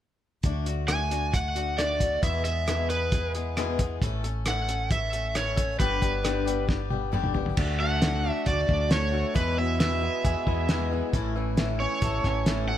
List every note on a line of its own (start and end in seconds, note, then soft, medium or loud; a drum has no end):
0.43 2.19 D2 medium
0.43 0.66 D3 medium
0.43 0.67 A3 medium
0.43 0.66 D4 medium
0.43 0.65 F#4 medium
0.43 kick medium
0.43 closed hi-hat medium
0.66 0.87 A3 soft
0.66 0.88 D4 soft
0.66 0.88 F#4 soft
0.66 closed hi-hat soft
0.88 1.11 D3 medium
0.88 1.11 A3 medium
0.88 1.11 D4 medium
0.88 1.09 F#4 medium
0.88 1.34 G#5 medium
0.88 cross-stick medium
0.88 closed hi-hat medium
1.11 1.33 A3 soft
1.11 1.34 D4 soft
1.11 1.33 F#4 soft
1.11 closed hi-hat medium
1.33 1.55 D3 soft
1.33 1.56 A3 soft
1.33 1.55 D4 soft
1.33 1.54 F#4 soft
1.33 1.80 F#5 medium
1.33 kick medium
1.33 closed hi-hat medium
1.55 1.77 A3 soft
1.55 1.77 D4 soft
1.55 1.78 F#4 soft
1.55 closed hi-hat soft
1.78 2.00 D3 medium
1.78 2.00 A3 medium
1.78 2.00 D4 medium
1.78 1.99 F#4 medium
1.78 2.23 D5 medium
1.78 cross-stick medium
1.78 closed hi-hat medium
2.00 2.23 A3 soft
2.00 2.23 D4 soft
2.00 2.22 F#4 soft
2.00 kick medium
2.00 closed hi-hat soft
2.22 2.45 E2 medium
2.22 3.98 E2 medium
2.22 2.45 B2 medium
2.22 2.45 E3 medium
2.22 2.45 G#3 medium
2.22 2.44 B3 medium
2.22 2.43 G#4 medium
2.22 2.43 E5 medium
2.22 kick medium
2.22 closed hi-hat medium
2.44 2.66 E3 soft
2.44 2.67 G#3 soft
2.44 2.67 B3 soft
2.44 2.67 G#4 soft
2.44 2.86 E5 medium
2.44 closed hi-hat soft
2.67 2.89 E2 medium
2.67 2.89 B2 medium
2.67 2.90 E3 medium
2.67 2.90 G#3 medium
2.67 2.89 B3 medium
2.67 2.88 G#4 medium
2.67 cross-stick medium
2.67 closed hi-hat medium
2.89 3.11 E3 soft
2.89 3.11 G#3 soft
2.89 3.12 B3 soft
2.89 3.12 G#4 soft
2.89 3.32 B4 medium
2.89 closed hi-hat soft
3.12 3.34 E3 soft
3.12 3.35 G#3 soft
3.12 3.35 B3 soft
3.12 3.34 G#4 medium
3.12 kick medium
3.12 closed hi-hat medium
3.35 3.57 E3 soft
3.35 3.57 G#3 soft
3.35 3.57 B3 soft
3.35 3.57 G#4 soft
3.35 closed hi-hat soft
3.57 3.80 E2 medium
3.57 3.80 B2 medium
3.57 3.80 E3 medium
3.57 3.80 G#3 medium
3.57 3.79 B3 medium
3.57 3.79 G#4 medium
3.57 cross-stick medium
3.57 closed hi-hat medium
3.79 4.02 E3 soft
3.79 4.03 G#3 soft
3.79 4.02 B3 soft
3.79 4.02 G#4 soft
3.79 kick medium
3.79 closed hi-hat soft
4.01 5.76 A1 medium
4.01 4.24 A2 medium
4.01 4.25 E3 medium
4.01 4.25 A3 medium
4.01 4.24 C#4 medium
4.01 4.23 A4 medium
4.01 kick medium
4.01 closed hi-hat medium
4.24 4.47 A3 soft
4.24 4.47 C#4 soft
4.24 4.46 A4 soft
4.24 closed hi-hat soft
4.46 4.69 A2 medium
4.46 4.69 E3 medium
4.46 4.70 A3 medium
4.46 4.69 C#4 medium
4.46 4.68 A4 medium
4.46 4.89 F#5 medium
4.46 cross-stick medium
4.46 closed hi-hat medium
4.69 4.90 A3 soft
4.69 4.91 C#4 soft
4.69 4.91 A4 soft
4.69 closed hi-hat medium
4.91 5.13 E3 soft
4.91 5.13 A3 soft
4.91 5.13 C#4 soft
4.91 5.12 A4 soft
4.91 5.37 E5 medium
4.91 kick medium
4.91 closed hi-hat medium
5.13 5.35 A3 soft
5.13 5.35 C#4 soft
5.13 5.35 A4 soft
5.13 closed hi-hat soft
5.35 5.58 A2 medium
5.35 5.58 E3 medium
5.35 5.57 A3 medium
5.35 5.56 C#4 medium
5.35 5.55 A4 medium
5.35 5.79 C#5 medium
5.35 cross-stick medium
5.35 closed hi-hat medium
5.56 5.80 A3 soft
5.56 5.80 C#4 soft
5.56 5.79 A4 soft
5.56 kick medium
5.56 closed hi-hat medium
5.79 7.54 G1 medium
5.79 6.02 G2 medium
5.79 6.02 D3 medium
5.79 6.02 G3 medium
5.79 6.02 B3 medium
5.79 6.01 D4 medium
5.79 6.00 G4 medium
5.79 6.65 B4 medium
5.79 kick medium
5.79 closed hi-hat medium
6.01 6.23 G3 soft
6.01 6.24 B3 soft
6.01 6.24 D4 soft
6.01 6.24 G4 soft
6.01 kick medium
6.01 closed hi-hat medium
6.23 6.46 G2 medium
6.23 6.47 D3 medium
6.23 6.47 G3 medium
6.23 6.46 B3 medium
6.23 6.45 D4 medium
6.23 6.44 G4 medium
6.23 cross-stick medium
6.23 closed hi-hat medium
6.46 6.66 G3 soft
6.46 6.67 B3 soft
6.46 6.68 D4 soft
6.46 6.69 G4 soft
6.46 closed hi-hat soft
6.67 6.91 G3 medium
6.67 6.91 B3 soft
6.67 6.90 D4 medium
6.67 6.89 G4 medium
6.67 kick medium
6.67 snare soft
6.90 7.12 G3 soft
6.90 7.12 B3 soft
6.90 7.12 D4 soft
6.90 7.13 G4 soft
6.90 high tom medium
7.12 7.35 G2 medium
7.12 7.35 D3 medium
7.12 7.35 G3 medium
7.12 7.34 B3 medium
7.12 7.34 D4 medium
7.12 7.33 G4 medium
7.12 mid tom medium
7.24 mid tom medium
7.34 7.56 G3 soft
7.34 7.57 B3 soft
7.34 7.57 D4 soft
7.34 7.57 G4 medium
7.34 floor tom medium
7.46 floor tom medium
7.57 8.30 D2 medium
7.57 7.80 D3 medium
7.57 7.80 A3 medium
7.57 7.79 D4 medium
7.57 7.78 F#4 medium
7.57 kick medium
7.57 crash medium
7.79 8.01 A3 soft
7.79 8.01 D4 soft
7.79 8.02 F#4 soft
7.79 8.32 F#5 medium
8.02 8.25 D3 medium
8.02 8.25 A3 medium
8.02 8.24 D4 medium
8.02 8.23 F#4 medium
8.02 snare medium
8.02 closed hi-hat medium
8.24 8.45 A3 soft
8.24 8.46 D4 soft
8.24 8.46 F#4 soft
8.32 8.49 E5 medium
8.45 8.65 D2 medium
8.45 8.68 D3 soft
8.45 8.68 A3 medium
8.45 8.67 D4 soft
8.45 8.66 F#4 medium
8.45 8.92 D5 medium
8.45 kick medium
8.45 closed hi-hat medium
8.67 9.23 D2 medium
8.67 8.89 A3 soft
8.67 8.90 D4 soft
8.67 8.90 F#4 soft
8.67 kick medium
8.89 9.13 D3 medium
8.89 9.13 A3 medium
8.89 9.12 D4 medium
8.89 9.11 F#4 medium
8.89 9.36 C#5 medium
8.89 snare medium
8.89 closed hi-hat medium
9.12 9.36 D3 medium
9.12 9.34 A3 soft
9.12 9.35 D4 soft
9.12 9.35 F#4 soft
9.34 9.57 E2 medium
9.34 10.08 E2 medium
9.34 9.57 B2 medium
9.34 9.57 E3 medium
9.34 9.57 G#3 medium
9.34 9.57 B3 medium
9.34 9.56 E4 medium
9.34 9.57 B4 medium
9.34 kick loud
9.34 closed hi-hat medium
9.57 10.69 B2 medium
9.57 9.80 E3 soft
9.57 9.79 G#3 soft
9.57 9.80 B3 soft
9.57 9.80 E4 soft
9.57 9.79 E5 medium
9.80 10.02 E2 medium
9.80 10.02 B2 medium
9.80 10.02 E3 medium
9.80 10.02 G#3 medium
9.80 10.01 B3 medium
9.80 10.00 E4 medium
9.80 10.87 E5 medium
9.80 snare loud
9.80 closed hi-hat medium
10.01 10.23 E3 soft
10.01 10.24 G#3 soft
10.01 10.24 B3 soft
10.01 10.24 E4 medium
10.24 10.34 E2 medium
10.24 10.46 E3 soft
10.24 10.47 G#3 medium
10.24 10.46 B3 soft
10.24 10.45 E4 medium
10.24 11.13 G#4 medium
10.24 kick medium
10.24 closed hi-hat medium
10.47 11.01 E2 medium
10.47 10.68 E3 soft
10.47 10.69 G#3 soft
10.47 10.69 B3 soft
10.47 10.69 E4 medium
10.47 kick medium
10.69 10.91 E2 medium
10.69 10.91 B2 medium
10.69 10.91 E3 medium
10.69 10.92 G#3 medium
10.69 10.92 B3 medium
10.69 10.91 E4 medium
10.69 snare medium
10.69 closed hi-hat soft
10.92 11.12 E3 soft
10.92 11.14 G#3 soft
10.92 11.14 B3 medium
10.92 11.14 E4 medium
11.13 11.85 A1 medium
11.13 11.36 A2 medium
11.13 11.36 E3 medium
11.13 11.36 A3 medium
11.13 11.35 C#4 medium
11.13 11.34 E4 medium
11.13 kick loud
11.13 closed hi-hat soft
11.36 11.57 E3 medium
11.36 11.58 A3 soft
11.36 11.58 C#4 soft
11.36 11.58 E4 medium
11.57 11.80 A2 medium
11.57 11.80 E3 medium
11.57 11.81 A3 medium
11.57 11.81 C#4 medium
11.57 11.80 E4 medium
11.57 snare medium
11.57 closed hi-hat medium
11.80 12.03 A3 soft
11.80 12.03 C#4 soft
11.80 12.03 E4 soft
11.80 12.65 C#5 medium
12.02 12.20 A1 medium
12.02 12.25 E3 soft
12.02 12.25 A3 soft
12.02 12.24 C#4 soft
12.02 12.23 E4 soft
12.02 12.78 A4 medium
12.02 kick medium
12.02 closed hi-hat medium
12.24 12.78 A1 medium
12.24 12.46 A3 soft
12.24 12.47 C#4 soft
12.24 12.46 E4 soft
12.24 kick medium
12.24 snare soft
12.46 12.69 A2 medium
12.46 12.69 E3 medium
12.46 12.69 A3 medium
12.46 12.68 C#4 medium
12.46 12.66 E4 medium
12.46 snare medium
12.46 closed hi-hat medium
12.67 12.78 E3 medium
12.67 12.78 A3 soft
12.67 12.78 C#4 soft
12.67 12.78 E4 soft
12.67 12.78 F#5 medium